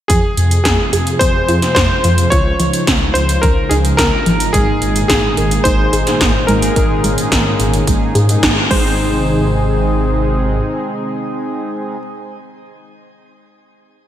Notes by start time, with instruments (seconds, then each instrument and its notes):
0.08 detuned saw bass F2, analog synth pad C3 F3 G#3 F4 G#4, synth arpeggio sound F3, electric grand piano G#4, kick, closed hi-hat
0.37 detuned saw bass F2, closed hi-hat
0.51 closed hi-hat
0.64 detuned saw bass F2, synth arpeggio sound C4, electric grand piano G#4, kick, snare, closed hi-hat
0.93 detuned saw bass F2, synth arpeggio sound G#4, closed hi-hat
1.07 closed hi-hat
1.19 detuned saw bass F2, synth arpeggio sound C4, electric grand piano C5, kick, closed hi-hat
1.49 detuned saw bass F2, synth arpeggio sound F4, closed hi-hat
1.62 snare, closed hi-hat
1.75 detuned saw bass F2, electric grand piano C5, kick, snare, closed hi-hat
2.04 detuned saw bass F2, synth arpeggio sound F3, closed hi-hat
2.18 closed hi-hat
2.30 detuned saw bass C#2, analog synth pad C#3 D#4, synth arpeggio sound F4, electric grand piano C#5, kick, closed hi-hat
2.60 detuned saw bass C#2, synth arpeggio sound F3, closed hi-hat
2.73 closed hi-hat
2.87 detuned saw bass C#2, synth arpeggio sound C#4, kick, snare, closed hi-hat
3.14 detuned saw bass C#2, electric grand piano C5, closed hi-hat
3.29 closed hi-hat
3.42 detuned saw bass C#2, synth arpeggio sound F3, electric grand piano A#4, kick, closed hi-hat
3.69 detuned saw bass C#2, synth arpeggio sound D#4, electric grand piano G#4, closed hi-hat
3.85 closed hi-hat
3.97 detuned saw bass C#2, synth arpeggio sound C#4, electric grand piano A#4, kick, snare, closed hi-hat
4.26 detuned saw bass G#1, synth arpeggio sound F3, closed hi-hat
4.40 closed hi-hat
4.53 detuned saw bass G#1, analog polysynth G#2 G#3 A#3 D#4 G#4, analog synth pad A#2 D#3 G#4, synth arpeggio sound G#3, electric grand piano G#4, kick, closed hi-hat
4.82 detuned saw bass G#1, closed hi-hat
4.96 analog polysynth G#2 G#3 A#3 D#4 G#4, closed hi-hat
5.08 detuned saw bass G#1, synth arpeggio sound D#4, electric grand piano G#4, kick, snare, closed hi-hat
5.23 analog polysynth G#2 G#3 A#3 D#4 G#4
5.37 detuned saw bass G#1, synth arpeggio sound A#4, closed hi-hat
5.51 closed hi-hat
5.64 detuned saw bass G#1, analog polysynth G#2 G#3 A#3 D#4 G#4, synth arpeggio sound D#4, electric grand piano C5, kick, closed hi-hat
5.93 detuned saw bass G#1, synth arpeggio sound G#4, closed hi-hat
6.07 analog polysynth G#2 G#3 A#3 D#4 G#4, snare, closed hi-hat
6.21 detuned saw bass G#1, kick, snare, closed hi-hat
6.47 detuned saw bass G#1, analog polysynth G#2 G#3 A#3 D#4 G#4, synth arpeggio sound G#3, electric grand piano A#4, closed hi-hat
6.62 closed hi-hat
6.76 detuned saw bass G#1, analog polysynth G#2 G#3 A#3 D#4 G#4, analog synth pad C#4, synth arpeggio sound A#4, kick, closed hi-hat
7.04 detuned saw bass G#1, synth arpeggio sound G#3, closed hi-hat
7.18 analog polysynth G#2 G#3 A#3 D#4 G#4, closed hi-hat
7.32 detuned saw bass G#1, synth arpeggio sound D#4, kick, snare, closed hi-hat
7.46 analog polysynth G#2 G#3 A#3 D#4 G#4
7.60 detuned saw bass G#1, closed hi-hat
7.74 closed hi-hat
7.87 detuned saw bass G#1, analog polysynth G#2 G#3 A#3 D#4 G#4, synth arpeggio sound G#3, kick, closed hi-hat
8.15 detuned saw bass G#2, synth arpeggio sound G#4, closed hi-hat
8.29 analog polysynth G#2 G#3 A#3 D#4 G#4, closed hi-hat
8.43 detuned saw bass G#1, synth arpeggio sound D#4, kick, snare, closed hi-hat
8.71 detuned saw bass G#1, analog synth pad C3 D#3 G#3 D#4 G#4, synth arpeggio sound G#3, analog polysynth G#3 C4 D#4 G#4, electric grand piano C5, kick, crash